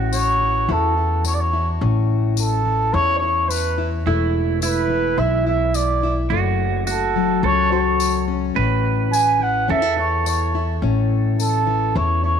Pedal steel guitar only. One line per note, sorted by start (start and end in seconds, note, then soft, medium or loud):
0.00 4.20 F#4 medium
4.07 4.59 E4 medium
4.63 6.28 E4 medium
6.30 6.83 F#4 loud
6.87 7.44 F#4 medium
7.44 8.25 A4 loud
8.56 9.73 B4 loud
9.70 12.40 A4 loud